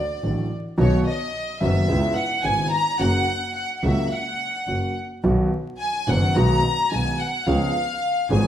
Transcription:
0.00 0.51 D5 medium
0.23 0.47 A1 medium
0.23 0.47 A2 medium
0.23 0.46 D3 soft
0.23 0.47 F#3 soft
0.23 0.47 A3 soft
0.23 0.47 F#4 medium
0.77 1.01 B1 medium
0.77 1.02 B1 loud
0.77 1.02 B2 medium
0.77 1.01 D#3 medium
0.77 1.01 F#3 medium
0.77 1.02 B3 medium
0.77 1.02 F#4 medium
0.77 1.05 C#5 medium
1.07 1.58 D#5 medium
1.61 1.85 F#1 medium
1.61 1.84 F#2 medium
1.61 1.84 D#3 medium
1.61 1.84 F#3 medium
1.61 1.84 B3 medium
1.61 1.85 F#4 medium
1.61 2.17 E5 medium
1.88 2.12 C#2 medium
1.88 2.12 C#3 medium
1.88 2.12 G#3 medium
1.88 2.12 B3 medium
1.88 2.12 E4 medium
2.17 2.45 F#5 medium
2.44 2.68 G#1 medium
2.44 2.68 G#2 medium
2.44 2.68 C#3 soft
2.44 2.68 G#3 soft
2.44 2.68 B3 soft
2.44 2.68 E4 soft
2.44 2.72 G#5 loud
2.72 2.98 A#5 loud
2.99 3.23 F#1 loud
2.99 3.23 F#2 medium
2.99 3.23 C#3 medium
2.99 3.23 F#3 medium
2.99 3.23 A#3 medium
2.99 3.24 F#4 medium
2.99 3.55 F#5 loud
3.56 3.75 F#5 medium
3.76 3.84 F#5 medium
3.83 4.07 C#2 medium
3.83 4.07 C#3 medium
3.83 4.07 F#3 medium
3.83 4.07 A#3 medium
3.83 4.07 F#4 medium
3.83 4.12 E5 medium
4.11 4.96 F#5 medium
4.68 4.92 F#1 medium
4.68 4.92 F#2 medium
4.68 4.92 C#3 soft
4.68 4.92 F#3 soft
4.68 4.92 A#3 soft
4.68 4.92 F#4 soft
5.23 5.47 B1 medium
5.23 5.47 B2 medium
5.23 5.47 D#3 medium
5.23 5.47 F#3 medium
5.23 5.47 B3 medium
5.23 5.47 F#4 medium
5.80 6.06 G#5 medium
6.08 6.31 F#1 loud
6.08 6.31 F#1 medium
6.08 6.32 F#2 medium
6.08 6.31 D#3 medium
6.08 6.31 F#3 medium
6.08 6.32 B3 medium
6.08 6.32 F#4 medium
6.08 6.36 F#5 medium
6.36 6.59 B1 loud
6.36 6.59 B1 medium
6.36 6.59 B2 medium
6.36 6.59 D#3 medium
6.36 6.59 G#3 medium
6.36 6.60 B3 medium
6.36 6.60 F#4 medium
6.36 6.92 A#5 loud
6.92 7.15 B1 medium
6.92 7.15 B2 medium
6.92 7.15 D#3 soft
6.92 7.15 G#3 soft
6.92 7.15 B3 soft
6.92 7.15 F#4 soft
6.92 7.20 G#5 loud
7.19 7.47 F#5 medium
7.47 7.70 C#2 medium
7.47 7.70 C#3 medium
7.47 7.70 F3 medium
7.47 7.70 B3 medium
7.47 7.70 C#4 medium
7.47 7.70 G#4 medium
7.47 8.30 F5 loud
8.30 8.47 G#1 loud
8.30 8.47 G#1 medium
8.30 8.47 G#2 medium
8.30 8.47 F3 medium
8.30 8.47 B3 medium
8.30 8.47 C#4 medium
8.30 8.47 G#4 medium
8.30 8.47 G#5 medium

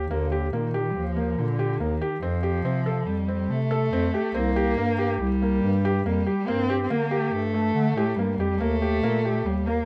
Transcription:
0.04 0.12 D#3 medium
0.10 0.49 D#2 medium
0.10 0.52 D3 medium
0.10 0.24 A#3 medium
0.32 0.45 G4 medium
0.52 0.91 A#2 medium
0.52 0.92 D#3 medium
0.52 0.67 A#3 medium
0.74 1.02 G4 medium
0.90 0.97 G3 medium
0.95 1.34 D#2 medium
0.95 1.40 F3 medium
1.16 1.44 A#3 medium
1.37 1.77 A#2 medium
1.37 1.83 D3 medium
1.59 1.73 G4 medium
1.80 2.00 D#2 medium
1.80 2.21 D#3 medium
1.80 1.94 A#3 medium
2.02 2.15 G4 medium
2.21 2.61 F2 medium
2.21 3.08 F3 medium
2.21 2.36 C4 medium
2.43 2.57 G4 medium
2.64 3.03 C3 medium
2.64 2.79 C4 medium
2.86 3.14 A4 medium
3.06 3.46 F2 medium
3.06 3.52 G3 medium
3.28 3.56 C4 medium
3.49 3.89 C3 medium
3.49 4.36 A3 medium
3.71 3.85 A4 medium
3.92 4.12 F2 medium
3.92 4.07 C4 medium
4.14 4.28 G4 medium
4.34 4.74 C2 loud
4.34 5.22 A#3 medium
4.34 4.48 C4 medium
4.56 4.70 G4 medium
4.77 5.17 G2 medium
4.77 4.92 A#3 medium
4.98 5.26 G4 medium
5.19 5.59 C2 medium
5.19 6.05 G3 loud
5.42 5.70 A#3 medium
5.62 6.02 G2 loud
5.85 5.98 G4 medium
6.05 6.25 F2 medium
6.05 6.48 G3 medium
6.05 6.19 A#3 medium
6.27 6.40 G4 medium
6.47 6.87 G2 medium
6.47 6.62 A#3 medium
6.47 6.83 C4 loud
6.70 6.83 G4 medium
6.84 6.92 C4 medium
6.90 7.29 D3 medium
6.90 7.04 A#3 medium
6.90 7.33 A#3 medium
7.11 7.39 G4 medium
7.32 7.71 G2 medium
7.32 8.17 A3 medium
7.54 7.82 A3 medium
7.74 7.94 D3 medium
7.96 8.15 A2 medium
7.96 8.11 G4 medium
8.16 8.37 G2 medium
8.16 8.60 G3 medium
8.16 8.32 A#3 medium
8.38 8.58 F2 medium
8.38 8.53 G4 medium
8.59 8.99 D#2 medium
8.59 9.47 A3 loud
8.59 8.74 A#3 medium
8.82 8.96 G4 medium
9.02 9.42 A#2 medium
9.02 9.17 A#3 medium
9.25 9.53 G4 medium
9.45 9.84 D#2 medium
9.45 9.68 G3 medium
9.67 9.85 A#3 medium

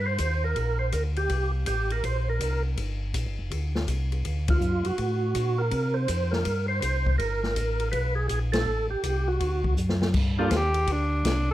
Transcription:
0.00 0.18 G2 medium
0.06 0.44 C5 medium
0.18 0.55 D#2 medium
0.18 kick soft
0.18 hi-hat pedal medium
0.18 ride medium
0.44 0.78 A#4 medium
0.56 0.92 A#1 medium
0.56 kick soft
0.56 ride soft
0.79 0.93 C5 medium
0.92 1.29 D2 medium
0.92 1.04 A#4 medium
0.92 kick soft
0.92 hi-hat pedal soft
0.92 ride medium
1.16 1.51 G4 medium
1.16 ride soft
1.29 1.66 C2 medium
1.29 kick soft
1.29 ride medium
1.66 2.02 A1 medium
1.66 1.91 G4 medium
1.66 kick soft
1.66 hi-hat pedal medium
1.66 ride medium
1.90 2.05 A#4 medium
1.90 ride soft
2.04 2.39 A#1 medium
2.04 2.29 C5 medium
2.04 kick soft
2.04 ride medium
2.29 2.63 A#4 medium
2.40 2.76 C2 medium
2.40 kick soft
2.40 hi-hat pedal soft
2.40 ride medium
2.77 3.13 G1 medium
2.77 kick soft
2.77 ride medium
3.14 3.26 A#1 medium
3.14 kick soft
3.14 hi-hat pedal soft
3.14 ride medium
3.27 3.39 G1 soft
3.39 3.51 F1 medium
3.51 3.87 D2 medium
3.51 kick soft
3.51 ride medium
3.75 snare soft
3.88 4.24 C2 medium
3.88 kick soft
3.88 hi-hat pedal soft
3.88 ride medium
4.12 ride soft
4.25 4.61 D2 medium
4.25 kick soft
4.25 ride soft
4.48 4.87 F4 medium
4.48 kick medium
4.48 ride medium
4.61 4.83 F#2 medium
4.61 hi-hat pedal soft
4.85 4.92 F#2 soft
4.85 5.62 F#4 medium
4.85 ride soft
4.98 5.34 A2 medium
4.98 kick soft
4.98 ride soft
5.35 5.71 A#2 medium
5.35 kick soft
5.35 hi-hat pedal soft
5.35 ride medium
5.58 5.97 A#4 medium
5.71 6.08 C3 medium
5.71 kick soft
5.71 ride medium
5.94 6.33 C5 loud
6.08 6.45 F2 medium
6.08 kick soft
6.08 hi-hat pedal soft
6.08 ride medium
6.31 6.66 A#4 loud
6.31 snare soft
6.45 6.81 G2 medium
6.45 kick soft
6.45 ride medium
6.68 6.80 C5 medium
6.81 7.18 C2 medium
6.81 7.16 C5 medium
6.81 kick soft
6.81 hi-hat pedal medium
6.81 ride medium
7.06 kick soft
7.18 7.55 G1 medium
7.18 7.89 A#4 medium
7.18 kick soft
7.18 ride medium
7.43 snare soft
7.56 7.92 A1 medium
7.56 kick soft
7.56 hi-hat pedal soft
7.56 ride medium
7.80 ride soft
7.92 8.29 B1 medium
7.92 8.15 B4 medium
7.92 kick soft
7.92 ride medium
8.15 8.27 G#4 medium
8.28 8.66 A#1 medium
8.28 8.39 G#4 medium
8.28 kick soft
8.28 hi-hat pedal medium
8.28 ride medium
8.52 8.87 A4 medium
8.52 snare medium
8.52 ride medium
8.66 8.89 A1 medium
8.90 8.97 A1 soft
8.90 9.29 G4 medium
9.03 9.40 C2 medium
9.03 kick soft
9.03 hi-hat pedal soft
9.03 ride medium
9.28 9.74 F#4 medium
9.40 9.76 D2 medium
9.40 kick soft
9.40 ride soft
9.64 kick soft
9.77 10.13 F#2 medium
9.77 hi-hat pedal soft
9.89 snare soft
10.02 snare medium
10.14 10.50 G2 medium
10.14 kick medium
10.14 crash medium
10.38 10.50 A#3 medium
10.38 10.50 D4 medium
10.38 10.50 F4 medium
10.38 10.57 F4 medium
10.38 10.50 G4 medium
10.38 10.51 A4 medium
10.51 10.87 D#2 medium
10.51 kick soft
10.51 snare medium
10.51 hi-hat pedal medium
10.51 ride medium
10.56 10.94 G4 medium
10.74 ride soft
10.87 11.24 D2 medium
10.87 kick soft
10.87 ride medium
10.92 11.50 D4 medium
11.25 11.54 C2 medium
11.25 kick soft
11.25 snare medium
11.25 hi-hat pedal medium
11.25 ride medium

